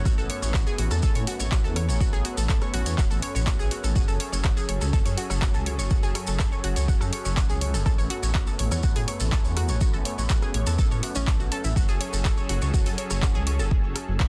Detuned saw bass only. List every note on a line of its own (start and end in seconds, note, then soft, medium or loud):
0.05 0.16 A1 loud
0.18 0.28 A1 medium
0.42 0.52 A1 medium
0.54 0.65 A1 loud
0.79 0.89 A1 medium
0.91 1.01 E2 medium
1.03 1.13 A1 loud
1.15 1.25 A2 medium
1.40 1.50 A1 medium
1.52 1.66 A1 loud
1.64 1.90 E2 medium
1.89 1.99 A1 medium
2.01 2.11 A1 loud
2.13 2.23 A1 medium
2.37 2.47 A1 medium
2.49 2.60 A1 loud
2.74 2.84 A1 loud
2.86 2.96 E2 medium
2.98 3.09 E1 loud
3.11 3.21 A1 medium
3.35 3.45 A1 medium
3.47 3.57 A1 loud
3.59 3.69 A1 medium
3.84 3.94 A1 medium
3.96 4.06 F#1 loud
4.08 4.18 F#1 medium
4.32 4.43 F#1 medium
4.44 4.55 F#1 loud
4.69 4.79 F#1 medium
4.81 4.91 C#2 medium
4.93 5.04 F#1 loud
5.06 5.16 F#2 medium
5.30 5.40 F#1 medium
5.42 5.56 F#1 loud
5.55 5.80 C#2 medium
5.79 5.89 F#1 medium
5.91 6.01 F#1 loud
6.03 6.13 F#1 medium
6.28 6.38 F#1 medium
6.40 6.50 F#1 loud
6.64 6.75 F#1 medium
6.77 6.87 C#2 medium
6.88 6.99 F#1 loud
7.01 7.11 F#2 medium
7.25 7.35 F#1 medium
7.37 7.51 F#1 loud
7.50 7.76 C#2 medium
7.74 7.84 F#1 medium
7.86 7.96 A1 loud
7.98 8.08 A1 medium
8.23 8.33 A1 medium
8.35 8.45 A1 loud
8.59 8.70 A1 medium
8.71 8.82 E2 medium
8.83 8.94 A1 loud
8.96 9.06 A2 medium
9.20 9.30 A1 medium
9.32 9.46 A1 loud
9.45 9.71 E2 medium
9.69 9.79 A1 medium
9.81 9.92 A1 loud
9.93 10.03 A1 medium
10.18 10.28 A1 medium
10.30 10.40 A1 loud
10.54 10.65 A1 medium
10.67 10.77 E2 medium
10.79 10.89 A1 loud
10.91 11.01 A2 medium
11.15 11.26 A1 medium
11.27 11.38 A1 loud
11.40 11.50 A1 medium
11.64 11.74 A1 medium
11.76 11.87 F#1 loud
11.89 11.99 F#1 medium
12.13 12.23 F#1 medium
12.25 12.35 F#1 loud
12.49 12.60 F#1 loud
12.62 12.72 C#2 medium
12.74 12.84 F#1 loud
12.86 12.96 F#2 medium
13.11 13.21 F#1 medium
13.23 13.36 F#1 loud
13.35 13.61 C#2 medium
13.59 13.69 F#1 medium
13.71 13.82 F#1 loud
13.84 13.94 F#1 medium
14.08 14.18 F#1 medium
14.20 14.28 F#1 loud